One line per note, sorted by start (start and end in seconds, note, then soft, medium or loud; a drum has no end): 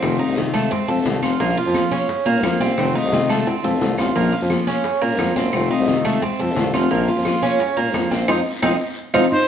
0.00 0.18 F1 loud
0.00 0.18 C3 medium
0.00 0.19 D#3 medium
0.00 0.19 A3 medium
0.00 0.18 C4 medium
0.00 0.19 C4 medium
0.00 0.18 F4 medium
0.00 high bongo medium
0.00 high conga soft
0.00 long guiro medium
0.00 claves medium
0.19 0.36 A3 soft
0.19 0.36 C4 soft
0.19 0.53 D#4 medium
0.19 0.36 F4 medium
0.19 high conga soft
0.28 0.44 C2 medium
0.36 0.70 C3 medium
0.36 0.70 D#3 medium
0.36 0.70 A3 medium
0.36 0.70 C4 medium
0.36 0.71 F4 medium
0.36 high bongo medium
0.36 high conga medium
0.36 short guiro medium
0.54 0.70 A3 medium
0.54 high bongo soft
0.54 low conga medium
0.54 short guiro medium
0.54 claves medium
0.71 0.88 C4 medium
0.71 muted steel-string acoustic guitar stroke medium
0.71 high bongo medium
0.71 high conga soft
0.71 low conga medium
0.71 long guiro medium
0.88 1.07 F2 medium
0.88 1.05 A3 soft
0.88 1.05 C4 soft
0.88 1.05 F4 medium
0.88 1.22 A4 medium
0.88 high bongo soft
0.88 high conga soft
1.05 1.22 C2 loud
1.05 1.22 C3 medium
1.05 1.22 D#3 medium
1.05 1.22 A3 medium
1.05 1.22 C4 medium
1.05 1.21 F4 medium
1.05 high bongo medium
1.05 low bongo medium
1.05 high conga medium
1.05 short guiro medium
1.22 1.39 F1 medium
1.22 1.40 A3 soft
1.22 1.39 C4 soft
1.22 1.39 F4 soft
1.22 1.39 F4 medium
1.22 high bongo soft
1.22 high conga medium
1.22 short guiro medium
1.22 claves medium
1.39 1.56 A#1 loud
1.39 1.56 F3 medium
1.39 1.56 A#3 medium
1.39 1.57 A#3 medium
1.39 1.56 C#4 medium
1.39 1.56 F4 medium
1.39 high bongo medium
1.39 high conga soft
1.39 long guiro medium
1.57 1.74 A#3 soft
1.57 1.74 C#4 soft
1.57 1.74 F4 soft
1.57 1.91 F4 medium
1.57 high bongo soft
1.57 high conga soft
1.66 1.82 F2 loud
1.74 2.07 F3 medium
1.74 2.07 A#3 medium
1.74 2.08 C#4 medium
1.74 2.08 F4 medium
1.74 high bongo medium
1.74 high conga loud
1.74 short guiro medium
1.74 claves medium
1.91 2.25 C#4 medium
1.91 high bongo soft
1.91 high conga medium
1.91 short guiro medium
2.08 muted steel-string acoustic guitar stroke medium
2.08 high bongo medium
2.08 high conga soft
2.08 long guiro medium
2.26 2.45 A#2 medium
2.26 2.59 A#3 medium
2.26 2.42 A#3 soft
2.26 2.43 C#4 soft
2.26 2.42 F4 soft
2.26 high bongo soft
2.26 high conga soft
2.43 2.60 F2 loud
2.43 2.60 F3 medium
2.43 2.60 A#3 medium
2.43 2.60 C#4 medium
2.43 2.59 F4 medium
2.43 high bongo medium
2.43 low bongo medium
2.43 high conga medium
2.43 short guiro medium
2.43 claves medium
2.60 2.77 C2 medium
2.60 2.78 A#3 soft
2.60 2.94 C4 medium
2.60 2.77 C#4 soft
2.60 2.77 F4 soft
2.60 high conga medium
2.60 short guiro medium
2.77 2.94 F1 loud
2.77 2.94 C3 medium
2.77 2.94 D#3 medium
2.77 2.94 A3 medium
2.77 2.94 C4 medium
2.77 2.94 F4 medium
2.77 high bongo medium
2.77 high conga soft
2.77 long guiro medium
2.77 claves medium
2.95 3.11 A3 soft
2.95 3.12 C4 soft
2.95 3.28 D#4 medium
2.95 3.11 F4 medium
2.95 high conga soft
3.04 3.20 C2 medium
3.12 3.45 C3 medium
3.12 3.45 D#3 medium
3.12 3.46 A3 medium
3.12 3.46 C4 medium
3.12 3.46 F4 medium
3.12 high bongo medium
3.12 high conga loud
3.12 short guiro medium
3.29 3.46 A3 loud
3.29 high bongo medium
3.29 low conga medium
3.29 short guiro medium
3.29 claves medium
3.46 3.64 C4 medium
3.46 muted steel-string acoustic guitar stroke medium
3.46 low bongo medium
3.46 high conga soft
3.46 long guiro medium
3.63 3.83 F2 medium
3.63 3.80 A3 soft
3.63 3.80 C4 soft
3.63 3.80 F4 medium
3.63 3.97 A4 medium
3.63 low bongo medium
3.63 high conga soft
3.81 3.97 C2 loud
3.81 3.97 C3 medium
3.81 3.98 D#3 medium
3.81 3.98 A3 medium
3.81 3.97 C4 medium
3.81 3.97 F4 medium
3.81 low bongo loud
3.81 high conga medium
3.81 short guiro medium
3.98 4.15 A1 medium
3.98 4.15 A3 soft
3.98 4.15 C4 soft
3.98 4.15 F4 medium
3.98 low bongo medium
3.98 high conga medium
3.98 short guiro medium
3.98 claves medium
4.15 4.32 A#1 medium
4.15 4.32 F3 medium
4.15 4.32 A#3 medium
4.15 4.32 C#4 medium
4.15 4.31 F4 medium
4.15 high bongo medium
4.15 high conga soft
4.15 long guiro medium
4.32 4.49 A#3 soft
4.32 4.49 C#4 soft
4.32 4.66 F4 medium
4.32 4.49 F4 soft
4.32 high bongo soft
4.32 high conga soft
4.42 4.58 F2 loud
4.50 4.83 F3 medium
4.50 4.83 A#3 medium
4.50 4.84 C#4 medium
4.50 4.84 F4 medium
4.50 high bongo medium
4.50 high conga medium
4.50 short guiro medium
4.50 claves medium
4.67 5.01 C#4 medium
4.67 high bongo soft
4.67 high conga medium
4.67 short guiro medium
4.84 muted steel-string acoustic guitar stroke medium
4.84 high bongo medium
4.84 high conga soft
4.84 long guiro medium
5.02 5.20 A#2 medium
5.02 5.35 A#3 loud
5.02 5.18 A#3 soft
5.02 5.18 C#4 soft
5.02 5.18 F4 soft
5.02 high bongo soft
5.02 high conga soft
5.18 5.35 F2 medium
5.18 5.35 F3 medium
5.18 5.35 A#3 medium
5.18 5.36 C#4 medium
5.18 5.35 F4 medium
5.18 high bongo medium
5.18 low bongo medium
5.18 high conga medium
5.18 short guiro medium
5.18 claves medium
5.36 5.53 F#1 medium
5.36 5.53 A#3 soft
5.36 5.69 C4 medium
5.36 5.53 C#4 soft
5.36 5.53 F4 soft
5.36 high conga medium
5.36 short guiro medium
5.53 5.70 F1 loud
5.53 5.70 C3 medium
5.53 5.70 D#3 medium
5.53 5.70 A3 medium
5.53 5.70 C4 medium
5.53 5.69 F4 medium
5.53 high bongo medium
5.53 high conga soft
5.53 long guiro medium
5.53 claves medium
5.70 5.87 A3 soft
5.70 5.87 C4 medium
5.70 6.04 D#4 medium
5.70 5.87 F4 medium
5.70 high conga soft
5.79 5.95 C2 loud
5.87 6.21 C3 medium
5.87 6.21 D#3 medium
5.87 6.21 A3 medium
5.87 6.21 C4 medium
5.87 6.21 F4 medium
5.87 high bongo medium
5.87 high conga medium
5.87 short guiro medium
6.05 6.22 A3 loud
6.05 high bongo soft
6.05 low conga medium
6.05 short guiro medium
6.05 claves medium
6.22 6.39 C4 medium
6.22 muted steel-string acoustic guitar stroke medium
6.22 high bongo medium
6.22 high conga soft
6.22 low conga medium
6.22 long guiro medium
6.39 6.58 F2 medium
6.39 6.56 A3 soft
6.39 6.56 C4 soft
6.39 6.56 F4 soft
6.39 6.73 A4 medium
6.39 high bongo soft
6.39 high conga soft
6.56 6.73 C2 loud
6.56 6.73 C3 medium
6.56 6.73 D#3 medium
6.56 6.73 A3 medium
6.56 6.73 C4 medium
6.56 6.72 F4 medium
6.56 high bongo medium
6.56 low bongo medium
6.56 high conga medium
6.56 short guiro medium
6.73 6.90 F1 loud
6.73 6.91 A3 soft
6.73 6.90 C4 soft
6.73 6.90 F4 medium
6.73 high bongo soft
6.73 high conga medium
6.73 short guiro medium
6.73 claves medium
6.91 7.07 A#1 loud
6.91 7.07 F3 medium
6.91 7.07 A#3 medium
6.91 7.08 A#3 medium
6.91 7.08 C#4 medium
6.91 7.07 F4 medium
6.91 high bongo medium
6.91 high conga soft
6.91 long guiro medium
7.08 7.25 A#3 soft
7.08 7.25 C#4 soft
7.08 7.41 F4 medium
7.08 7.25 F4 medium
7.08 high bongo soft
7.08 high conga soft
7.17 7.33 F2 medium
7.25 7.59 F3 medium
7.25 7.59 A#3 medium
7.25 7.59 C#4 medium
7.25 7.60 F4 medium
7.25 high bongo medium
7.25 high conga medium
7.25 short guiro medium
7.25 claves medium
7.42 7.76 C#4 medium
7.42 high bongo soft
7.42 high conga loud
7.42 short guiro medium
7.59 muted steel-string acoustic guitar stroke medium
7.59 high bongo medium
7.59 high conga soft
7.59 long guiro medium
7.77 7.96 A#2 medium
7.77 8.10 A#3 medium
7.77 7.93 A#3 soft
7.77 7.94 C#4 soft
7.77 7.93 F4 soft
7.77 high bongo soft
7.77 high conga soft
7.94 8.10 F2 loud
7.94 8.10 F3 medium
7.94 8.11 A#3 medium
7.94 8.11 C#4 medium
7.94 8.10 F4 medium
7.94 high bongo medium
7.94 low bongo medium
7.94 high conga medium
7.94 short guiro medium
7.94 claves medium
8.11 8.27 A#1 medium
8.11 8.28 A#3 soft
8.11 8.27 C4 medium
8.11 8.28 C#4 soft
8.11 8.28 F4 medium
8.11 high conga medium
8.11 short guiro medium
8.28 8.41 F2 medium
8.28 8.39 C4 medium
8.28 8.39 D#4 medium
8.28 8.39 F4 medium
8.28 low bongo loud
8.28 high conga medium
8.28 long guiro loud
8.28 claves loud
8.62 8.75 F2 medium
8.62 8.74 C4 loud
8.62 8.74 D#4 medium
8.62 8.74 D#4 loud
8.62 8.74 F4 medium
8.62 low bongo loud
8.62 high conga medium
8.62 claves loud
9.14 9.27 F2 medium
9.14 9.25 C4 loud
9.14 9.25 C4 medium
9.14 9.25 D#4 medium
9.14 9.25 D#4 loud
9.14 9.25 F4 loud
9.14 low bongo loud
9.14 high conga loud
9.14 long guiro loud
9.14 claves loud
9.32 9.48 D#4 medium
9.32 9.48 C5 loud